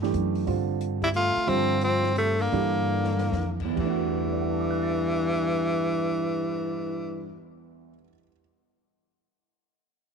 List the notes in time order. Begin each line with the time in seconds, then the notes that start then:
0.02 E3 A3 D4 G4, snare
0.14 F#2, closed hi-hat
0.35 open hi-hat
0.47 G2 D3 G3 C4 F4, open hi-hat
0.81 closed hi-hat
1.02 G3 E4, kick, open hi-hat
1.14 A3 F4, closed hi-hat
1.35 muted upright bass stroke, open hi-hat
1.47 G2 D3 F3 G3 C4 F4, open hi-hat
1.81 F3 C4, closed hi-hat
2.03 snare
2.16 C3 A3, closed hi-hat
2.38 D3 A#3, open hi-hat
2.52 G2 E3 D4 G4 A4, open hi-hat
3.04 snare
3.18 snare
3.32 F2, snare
3.60 kick, crash
3.65 E2
3.70 E3
3.75 E2 G2 G3, kick, crash
3.79 E3 A3
3.85 D4
3.90 F#4
4.07 cymbal swell
4.25 A4
4.33 D5
4.41 F#5
4.50 A5
4.60 D6
4.70 F#6
4.82 A6